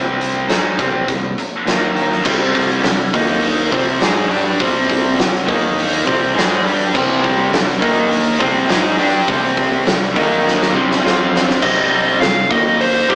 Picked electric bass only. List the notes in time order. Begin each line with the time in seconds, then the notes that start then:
Already playing: C2
0.49 G#2
0.79 C2
1.08 C2
1.66 D#2
2.26 C2
2.83 C2
3.14 D#2
3.72 C2
4.02 G#2
4.30 G2
4.60 C2
5.18 C2
5.48 D#2
6.08 C2
6.35 G#2
6.64 G2
6.95 C2
7.52 C2
7.82 D#2
8.40 C2
8.69 G#2
8.99 G2
9.28 C2
9.87 C2
10.16 D#2
10.73 C2
11.03 F2
11.62 C2
12.20 C2
12.50 D#2
13.10 C2